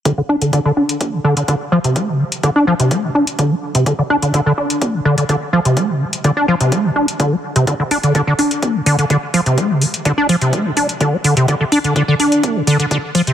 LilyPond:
<<
  \new Staff \with { instrumentName = "Acid bass" } { \clef bass \time 4/4 \key d \minor \tempo 4 = 126 d16 d16 d'16 d16 d16 d16 d'8 a16 c16 d16 d16 d16 r16 f16 c16 | a16 c16 e16 r16 d16 d'16 f16 c16 a16 c16 d'16 r16 d16 a16 r16 c16 | d16 d16 d'16 d16 d16 d16 d'8 a16 c16 d16 d16 d16 r16 f16 c16 | a16 c16 e16 r16 d16 d'16 f16 c16 a16 c16 d'16 r16 d16 a16 r16 c16 |
d16 d16 d'16 d16 d16 d16 d'8 a16 c16 d16 d16 d16 r16 f16 c16 | a16 c16 e16 r16 d16 d'16 f16 c16 a16 c16 d'16 r16 d16 a16 d16 c16 | d16 d16 d'16 d16 d16 d16 d'8 a16 c16 d16 d16 d16 r16 f16 c16 | }
  \new DrumStaff \with { instrumentName = "Drums" } \drummode { \time 4/4 <hh bd>8. hh16 <hh bd>8. hh16 <hh bd>8. hh16 <hh bd>8. hh16 | <hh bd>8. hh16 <hh bd>8. hh16 <hh bd>8. hh16 <hh bd>8. hh16 | <hh bd>8. hh16 <hh bd>8. hh16 <hh bd>8. hh16 <hh bd>8. hh16 | <hh bd>8. hh16 <hh bd>8. hh16 <hh bd>8. hh16 <hh bd>8. hh16 |
<hh bd>8 hho16 hh16 <hh bd>8 hho16 hh16 <hh bd>8 hho16 hh16 <hh bd>8 hho16 hh16 | <hh bd>8 hho16 hh16 <hh bd>8 hho16 hh16 <hh bd>8 hho16 hh16 <hh bd>8 hho16 hh16 | <hh bd>8 hho16 hh16 <hh bd>8 hho16 hh16 <hh bd>8 hho16 hh16 <hh bd>8 hho16 hh16 | }
>>